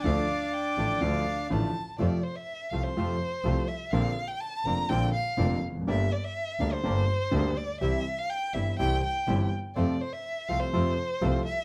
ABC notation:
X:1
M:4/4
L:1/16
Q:1/4=124
K:Dm
V:1 name="Violin"
f4 g4 f4 a4 | [K:F] d2 c e3 f c6- c e2 | f3 g a2 b2 g2 f4 z2 | e2 d e3 f c6- c d2 |
e3 f g2 e2 g2 g4 z2 | d2 c e3 f c6- c e2 |]
V:2 name="Bandoneon"
[Dd]12 z4 | [K:F] z16 | z16 | z16 |
z16 | z16 |]
V:3 name="Bandoneon"
[A,DF]2 z4 [A,DF]2 [A,DF]2 z2 [A,DF]2 z2 | [K:F] [A,CF]2 z4 [A,CF]2 [A,CF]2 z2 [A,CF]2 z2 | [B,CD]2 z4 [B,CD]2 [B,CD]2 z2 [B,CD]2 z2 | [G,B,D]2 z4 [G,B,D]2 [G,B,D]2 z2 [G,B,D]2 z2 |
[G,CE]2 z4 [G,CE]2 [G,CE]2 z2 [G,CE]2 z2 | [A,CF]2 z4 [A,CF]2 [A,CF]2 z2 [A,CF]2 z2 |]
V:4 name="Grand piano" clef=bass
[D,,D,F,A,F]2 z4 [A,,,A,,D,F,A,F]2 [D,,D,F,A,F]2 z2 [A,,,A,,D,F,A,F]2 z2 | [K:F] [F,,C,F,A,F]2 z4 [C,,C,F,A,F]2 [F,,C,F,A,F]2 z2 [C,,C,F,A,F]2 z2 | [B,,,B,,D,B,CF]2 z4 [F,,,F,,D,B,CF]2 [B,,,B,,D,B,CF]2 z2 [F,,,F,,D,B,CF]2 z/2 E,,/2 F,,/2 _G,,/2 | [G,,,G,,D,G,B,G]2 z4 [D,,D,G,B,G]2 [G,,,G,,D,G,B,G]2 z2 [D,,D,G,B,G]2 z2 |
[C,,C,E,G,CG]2 z4 [G,,,G,,E,G,CG]2 [C,,C,E,G,CG]2 z2 [G,,,G,,E,G,CG]2 z2 | [F,,C,F,A,F]2 z4 [C,,C,F,A,F]2 [F,,C,F,A,F]2 z2 [C,,C,F,A,F]2 z2 |]
V:5 name="Double bass" clef=bass
D,,2 z4 A,,,2 D,,2 z2 A,,,2 z2 | [K:F] F,,2 z4 C,,2 F,,2 z2 C,,2 z2 | B,,,2 z4 F,,,2 B,,,2 z2 F,,,2 F,,,2 | G,,,2 z4 D,,2 G,,,2 z2 D,,2 z2 |
C,,2 z4 G,,,2 C,,2 z2 G,,,2 z2 | F,,2 z4 C,,2 F,,2 z2 C,,2 z2 |]